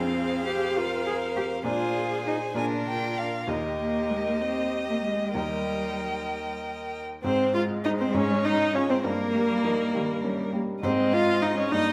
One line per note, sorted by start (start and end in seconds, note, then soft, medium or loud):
0.00 1.61 F2 medium
0.00 0.46 C4 medium
0.00 1.61 C4 soft
0.00 1.62 F4 soft
0.00 0.78 G#4 medium
0.00 1.62 G#4 soft
0.00 1.62 C5 medium
0.00 1.62 F5 medium
0.47 0.78 G4 medium
0.76 1.06 F4 medium
0.76 1.65 A#4 medium
1.06 1.14 G#4 medium
1.36 1.44 G4 medium
1.64 2.53 A#2 soft
1.64 2.53 A#3 soft
1.64 2.53 D4 soft
1.64 2.25 F4 medium
1.64 2.54 G#4 soft
1.64 2.57 G#4 medium
1.64 2.59 C5 medium
1.64 2.56 G#5 soft
2.27 2.35 D#4 medium
2.54 3.45 A#2 soft
2.54 3.45 A#3 soft
2.54 3.46 D4 soft
2.54 3.17 D4 medium
2.54 3.49 F4 soft
2.54 3.46 G#4 soft
2.54 3.49 A#4 medium
2.54 2.65 G#5 medium
2.87 3.19 G5 medium
3.18 3.50 F5 medium
3.47 5.31 D#2 soft
3.47 5.31 A#3 soft
3.47 5.31 D#4 soft
3.47 4.41 G4 soft
3.47 5.32 A#4 soft
3.47 4.44 A#4 soft
3.47 5.34 D#5 soft
3.80 4.12 A#3 medium
4.10 4.26 G#3 medium
4.27 4.42 A#3 medium
4.41 4.88 C4 medium
4.41 5.34 G4 soft
4.41 5.35 D#5 soft
4.89 5.03 A#3 medium
5.04 5.38 G#3 medium
5.34 7.20 D#2 soft
5.34 6.31 G3 medium
5.34 7.20 A#3 soft
5.34 7.20 D#4 soft
5.34 7.01 A#4 soft
5.34 7.21 A#4 soft
5.34 7.01 D#5 soft
5.34 7.01 G5 soft
7.24 8.12 G#2 medium
7.24 9.07 G#3 medium
7.24 7.52 C4 medium
7.24 7.53 C5 medium
7.54 8.03 G#3 soft
7.54 7.62 F4 medium
7.54 7.63 F4 medium
7.54 7.62 F5 medium
7.84 7.91 D#4 medium
7.84 8.12 D#4 soft
7.84 7.92 D#4 medium
7.84 8.13 C5 soft
7.84 7.90 D#5 medium
7.99 8.06 C4 medium
7.99 8.17 C4 medium
7.99 8.15 C5 medium
8.14 9.02 G#2 medium
8.14 8.45 C#4 medium
8.14 8.47 C#4 medium
8.14 8.46 C#5 medium
8.44 8.93 C#4 soft
8.44 8.76 D#4 medium
8.44 8.74 D#4 medium
8.44 8.75 D#5 medium
8.74 8.81 C#4 medium
8.74 8.92 C#4 medium
8.74 9.02 F4 soft
8.74 9.02 G#4 soft
8.74 8.91 C#5 medium
8.90 8.96 C4 medium
8.90 9.06 C4 medium
8.90 9.04 C5 medium
9.04 10.79 G2 medium
9.04 10.54 A#3 medium
9.04 10.51 A#3 medium
9.04 9.36 A#3 medium
9.04 10.51 A#4 medium
9.35 9.83 G3 soft
9.35 9.64 G3 medium
9.64 9.73 F3 medium
9.64 10.12 D#4 soft
9.94 10.03 D#3 medium
9.94 10.42 G3 soft
10.24 10.53 G3 medium
10.24 10.71 C#4 soft
10.53 10.83 G3 soft
10.53 10.62 A#3 medium
10.83 11.69 G#2 medium
10.83 11.70 G#3 medium
10.83 11.15 C4 medium
10.83 10.92 C5 medium
10.83 11.68 D#5 medium
11.12 11.60 C4 soft
11.12 11.44 F4 medium
11.12 11.44 F5 medium
11.42 11.69 D#4 soft
11.42 11.57 D#4 medium
11.42 11.69 D#5 medium
11.42 11.58 D#5 medium
11.56 11.73 C#4 medium
11.56 11.70 C#5 medium
11.71 11.93 G2 medium
11.71 11.93 A#3 medium
11.71 11.93 D#4 medium
11.71 11.93 D#5 medium